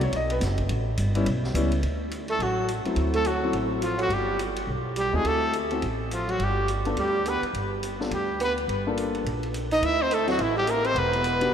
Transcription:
Already playing: upright bass C2
0.01 grand piano C#5, ride
0.12 upright bass B1, ride
0.16 grand piano D#5
0.30 grand piano B4, ride
0.41 upright bass F#1, snare, hi-hat pedal, ride
0.58 kick, ride
0.69 upright bass A1, ride
0.97 upright bass G1, hi-hat pedal, ride
1.15 grand piano G3 B3 C#4 E4, ride
1.26 upright bass B1, ride
1.44 snare
1.54 upright bass C#2, grand piano G3 B3 C#4 E4, hi-hat pedal, ride
1.72 ride
1.83 upright bass D2, ride
2.11 hi-hat pedal, ride
2.28 tenor saxophone A3, trumpet A4, ride
2.39 upright bass A1, tenor saxophone F#3, ride
2.43 trumpet F#4
2.68 hi-hat pedal, ride
2.85 grand piano F#3 A3 C4 E4, muted upright bass stroke, ride
2.96 upright bass D2, ride
3.14 tenor saxophone A3, trumpet A4, ride
3.25 tenor saxophone F#3, trumpet F#4, hi-hat pedal, ride
3.43 grand piano F#3 A3 C4 E4
3.52 upright bass A1, ride
3.82 tenor saxophone F3, trumpet F4, hi-hat pedal, ride
3.98 tenor saxophone F#3, trumpet F#4, ride
4.09 upright bass G1, tenor saxophone G3, ride
4.14 trumpet G4
4.39 hi-hat pedal, ride
4.56 ride
4.67 upright bass B1
4.96 tenor saxophone G3, trumpet G4, hi-hat pedal, ride
5.13 upright bass D#2, tenor saxophone G#3, grand piano A3 C4 E4 F#4, trumpet G#4
5.24 upright bass D2, tenor saxophone A3, trumpet A4, ride
5.53 hi-hat pedal, ride
5.71 grand piano A3 C4 E4 F#4, ride
5.82 upright bass A1, ride
6.11 tenor saxophone F3, trumpet F4, hi-hat pedal, ride
6.28 tenor saxophone F#3, trumpet F#4, ride
6.39 upright bass G1, tenor saxophone G3, ride
6.44 trumpet G4
6.68 hi-hat pedal, ride
6.85 grand piano B3 D4 F4 A4, ride
6.97 upright bass D2, tenor saxophone G3, trumpet G4, ride
7.26 tenor saxophone B3, trumpet B4, hi-hat pedal, ride
7.42 muted upright bass stroke, ride
7.53 upright bass G1, ride
7.83 hi-hat pedal, ride
8.00 grand piano B3 D4 F4 A4, snare
8.11 upright bass D2, tenor saxophone G3, trumpet G4, ride
8.40 tenor saxophone B3, trumpet B4, hi-hat pedal, ride
8.58 ride
8.67 upright bass G1, ride
8.87 grand piano A#3 D4 F4 A4
8.97 hi-hat pedal, ride
9.15 ride
9.25 upright bass A#1, ride
9.43 ride
9.54 hi-hat pedal, ride
9.71 tenor saxophone D#4, trumpet D#5, ride
9.81 upright bass D2, tenor saxophone E4, trumpet E5, ride
10.02 tenor saxophone C4, trumpet C5
10.11 tenor saxophone A3, trumpet A4, hi-hat pedal, ride
10.27 tenor saxophone F#3, grand piano C4 E4 F#4 A4, trumpet F#4, snare, ride
10.39 upright bass A1, tenor saxophone E3, trumpet E4, ride
10.56 tenor saxophone G3, trumpet G4
10.67 tenor saxophone A#3, trumpet A#4, hi-hat pedal, ride
10.84 tenor saxophone C4, trumpet C5, ride
10.94 upright bass E1, tenor saxophone B3, ride
10.99 trumpet B4
11.13 ride
11.24 hi-hat pedal, ride
11.40 grand piano B3 D4 F#4 G4, ride

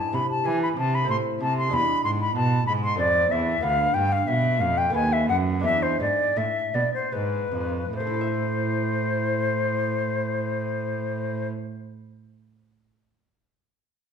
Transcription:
Already playing: lute G#2 B3 D4 E4, flute A5
0.13 lute C3, cello C3, flute B5
0.31 flute A5
0.45 lute E3, cello E3, flute G#5
0.63 flute B5
0.77 lute C3, cello C3, flute A5
0.95 flute B5
1.04 lute A3 C4 E4
1.09 lute A2, cello A2, flute C6
1.40 cello C3, lute C3, flute A5
1.58 flute C6
1.68 cello E2, lute G#3 D4 E4
1.73 lute E2, flute B5
2.04 cello G#2, lute G#2, flute C6
2.21 flute B5
2.36 lute B2, cello B2, flute A5
2.67 cello G#2, lute G#2, flute B5
2.83 flute C6
2.96 cello F2, lute A3 C4 A4, flute D5
3.00 lute F2
3.31 cello E2, lute E2, flute E5
3.61 cello D2, lute D2 B3 B4, flute F5
3.94 cello G2, lute G2, flute G5
4.12 flute F5
4.27 cello B2, lute B2, flute E5
4.60 lute F2, cello F2, flute F5
4.78 flute G5
4.90 lute A3 B3 B4
4.94 cello D#2, lute D#2, flute G#5
5.13 flute E5
5.28 cello F#2, lute F#2, flute F#5
5.60 lute G#3 D4 B4, flute E5
5.64 cello E2, lute E2
5.83 flute C5
6.00 cello G#2, lute G#2, flute D5
6.37 cello A2, lute A2, flute E5
6.74 lute B2, cello B2, flute D5
6.94 flute C5
7.12 lute G#2, cello G#2, flute B4
7.52 lute F2, cello F2
7.93 lute A2, cello A2, flute C5
8.00 lute A3
8.07 lute E4
8.14 lute A4
8.21 lute E5

